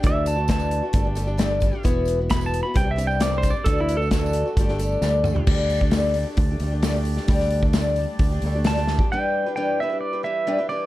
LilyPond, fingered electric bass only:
\new Staff \with { instrumentName = "Fingered electric bass" } { \clef bass \time 4/4 \key d \mixolydian \tempo 4 = 132 d,2 g,,2 | e,,2 c,2 | d,2 g,,4 d,4 | d,2 d,8 d,4. |
d,2 d,8 d,4. | r1 | }